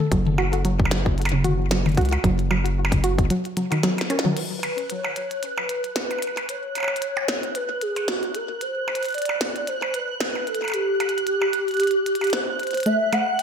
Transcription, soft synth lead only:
4.10 A#4
4.37 B4
4.90 C#5
5.43 B4
6.49 C#5
7.55 B4
7.82 G#4
8.08 F#4
8.35 A#4
8.61 C5
9.15 D5
9.68 C5
9.94 B4
10.47 A4
10.74 G4
12.33 C5
12.86 E5
13.13 F#5
13.39 G5

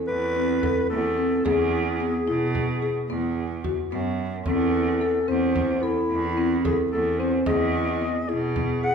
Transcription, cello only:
0.08 E2
0.90 E2
1.45 E2
2.27 B2
3.09 E2
3.91 F#2
4.46 E2
5.28 E2
6.10 E2
6.92 E2
7.47 E2
8.29 B2

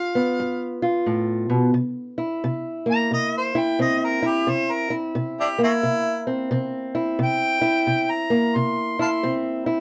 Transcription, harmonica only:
Already playing: F5
2.91 A#5
3.13 D#5
3.37 C5
3.59 G5
3.81 D#5
4.04 A#4
4.27 G4
4.50 C5
4.72 A#4
5.40 D4 E4 G4
5.64 A3 C4 E4
7.23 G5
8.11 A#5
8.57 C6
9.01 F5 A5 C6

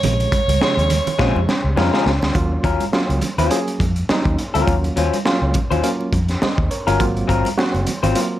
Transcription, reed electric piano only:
0.03 C3 C#3 F3 G#3
0.61 C3 C#3 F3 G#3
1.19 C3 C#3 F3 G#3
1.77 C#3 F3 G#3 C4
2.35 F#3 A#3 C#4 F4
2.93 F#3 A#3 C#4 F4
3.51 F#3 A#3 C#4 G#4
4.09 F#3 A#3 C#4 D#4
4.67 F#3 A#3 C#4 F4
5.25 F#3 A#3 C#4 F4
5.84 F#3 A#3 C#4 F4
6.42 C5 D#5
6.71 A#4 C#5
6.87 F#4 A#4
6.99 F#3 A#3 C4 F4
7.58 F#3 A#3 C4 F#4
8.15 F#3 A#3 C4 F4

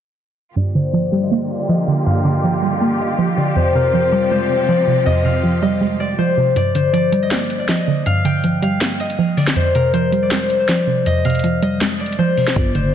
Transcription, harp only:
0.57 D5
0.75 C5
0.93 D5
1.23 D#5
1.31 D5
1.60 D5
1.69 D#5
2.06 F5
2.25 G5
2.63 F5
3.00 D#5
3.37 D5
3.56 C5
3.75 A#4
3.94 C5
4.22 D5
4.31 C5
4.60 C5
4.68 D5
5.06 D#5
5.25 F5
5.62 D#5
6.00 D5
6.19 C5
6.56 D5
6.75 C5
6.93 D5
7.23 D#5
7.31 D5
7.60 D5
7.69 D#5
8.06 F5
8.25 G5
8.63 F5
9.00 D#5
9.37 D5
9.56 C5
9.75 A#4
9.94 C5
10.23 D5
10.31 C5
10.60 C5
10.69 D5
11.06 D#5
11.25 F5
11.62 D#5
12.00 D5
12.19 C5
12.57 D5
12.75 C5

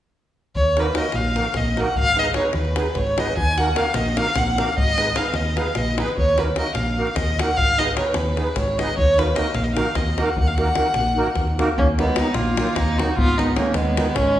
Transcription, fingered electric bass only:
0.56 D#2
1.14 A#1
1.56 A#1
1.97 G#1
2.54 D#2
2.96 G#1
3.37 D#2
3.94 A#1
4.36 A#1
4.78 G#1
5.33 D#2
5.76 A#1
6.19 D#2
6.75 A#1
7.17 D#2
7.58 G#1
8.16 D#2
8.56 G#1
8.98 D#2
9.55 A#1
9.96 D#2
10.37 D#2
10.96 A#1
11.36 D#2
11.78 D#2
12.35 A#1
12.76 D#2
13.17 G#1
13.74 D#2
14.15 G#1

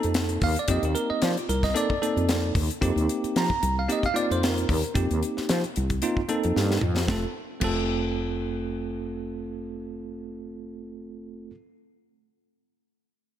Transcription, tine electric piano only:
Already playing: A#3 C4 D#4 A4
0.44 F5
0.59 D5
0.68 A#3 C4 D#4 G4 D#5
0.85 G4
0.95 A#4
1.10 D#5
1.22 D5
1.39 F4
1.49 A#4
1.64 D#5
1.74 A#3 C4 D#4 A4 D5
2.02 A#3 C4 D#4 A4
2.81 A#3 C4 D#4 G4
3.37 A#5
3.79 F5
3.88 A#3 C4 D#4 G4 D#5
4.06 F5
4.14 A#3 C4 D#4 F4 D5
4.32 C5
4.44 A#4
4.94 A#3 C4 D#4 G4
6.03 A#3 C4 D#4 F4
6.29 A#3 C4 D#4 A4
7.08 A3 C4 F4 A4
7.60 A3 C4 F4
7.64 A4

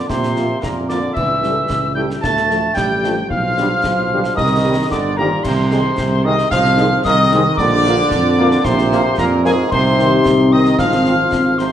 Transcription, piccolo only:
0.10 C6
0.63 A#5
0.89 D6
1.16 E6
1.95 G6
2.24 A6
2.78 G6
3.31 F6
4.36 D#6
4.91 D6
5.17 A#5
5.44 C6
6.25 D#6
6.51 F6
7.04 D#6
7.57 D6
8.65 C6
9.19 A#5
9.45 G#5
9.71 C6
10.52 D#6
10.79 F6
11.58 C6

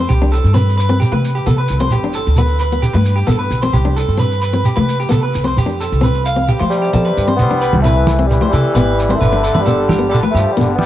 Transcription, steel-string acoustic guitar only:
0.22 D4
0.54 C4
0.89 C4
1.12 A3
1.46 B3
1.80 C4
2.04 D4
2.38 B3
2.72 B3
2.95 A3
3.27 B3
3.63 C4
3.85 D4
4.17 C4
4.53 C4
4.77 A3
5.09 B3
5.44 C4
5.66 D4
6.01 C4
6.36 C4
6.60 A3
6.93 B3
7.28 C4
7.51 D4
7.84 C4
8.19 C4
8.41 A3
8.76 B3
9.10 C4
9.32 D4
9.66 B3
9.99 B3
10.23 A3
10.57 B3

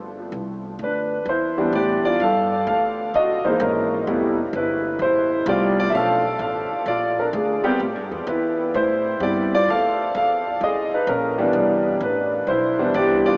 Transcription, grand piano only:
0.83 D4 B4
1.29 E4 C5
1.57 E3 G3 B3 D4
1.75 G4 D5
2.05 F4 D5
2.21 A4 F5
2.68 A4 F5
3.15 F#4 D#5
3.44 E3 G#3 A#3 D#4 C5
3.61 C#4 A#4
4.07 G3 A3 B3 E4
4.56 E4 B4
5.02 E4 C5
5.47 G3 A3 B3 F4 D5
5.51 F4
5.80 F4 D5
5.90 F3 A3 C#4 D4 E5
5.95 A4 F5
6.41 A4 F5
6.88 F4 D5
7.19 D4 A#4
7.34 D4 G#4
7.64 G3 B3 C4 G4
8.28 E4 B4
8.75 E4 C5
9.21 G3 B3 C4 E4 G4 D5
9.54 F4 D5
9.70 A4 F5
10.16 A4 F5
10.63 G#4 D#5
10.94 D#4 B4
11.09 C#4 A#4
11.38 E3 G3 B3 D4
12.03 D4 B4
12.48 E4 C5
12.79 E3 G3 B3 D4
12.95 G4 D5
13.26 F4 D5

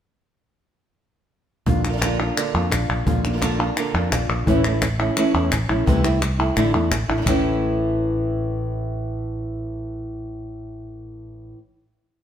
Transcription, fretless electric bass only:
1.67 A#1
2.54 F2
2.72 A#1
2.89 A#1
3.07 A#1
3.94 F2
4.12 A#1
4.29 A#1
4.47 A1
5.34 E2
5.52 A1
5.70 A#1
5.87 C2
6.57 A1
6.74 E2
6.91 A1
7.09 A1
7.26 A1

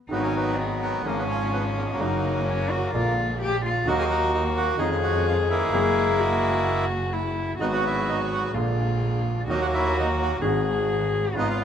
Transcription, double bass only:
0.10 G#1
1.05 G#1
2.00 F#1
2.93 A#1
3.87 D#2
4.80 F2
5.72 F#1
7.60 G#1
8.55 A#1
9.49 D#2
10.42 G#1
11.36 G#1

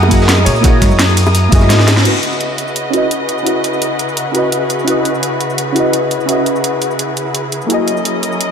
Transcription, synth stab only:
Already playing: A#3 E4 F#4 G#4 D#5 E5
0.08 A#3 E4 F#4
0.13 G#4 D#5
0.61 A#3 E4 F#4
0.66 G#4 D#5
1.49 A#3 E4 F#4
1.54 G#4 D#5
2.02 C#4 E4 F#4
2.07 B4 D#5
2.90 C#4 E4 F#4
2.95 B4 D#5
3.43 C#4 E4 F#4
3.48 B4 D#5
4.31 C#4 E4 F#4
4.36 B4 D#5
4.84 C#4 E4 F#4
4.90 B4 D#5
5.72 C#4 E4 F#4
5.78 B4 D#5
6.26 C#4 E4 F#4
6.31 B4 D#5
7.67 A#3 E4 F#4
7.72 G#4 D#5

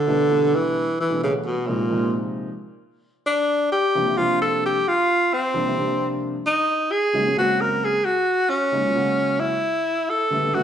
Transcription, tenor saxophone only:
Already playing: D3
0.55 E3
1.00 E3
1.24 C#3
1.46 B2
1.67 A#2
3.27 D4
3.72 G4
4.17 F4
4.42 A4
4.66 G4
4.88 F4
5.34 C4
6.47 D#4
6.92 G#4
7.38 F#4
7.61 A#4
7.85 G#4
8.05 F#4
8.50 C#4
9.40 E4
10.10 A4
10.55 F#4

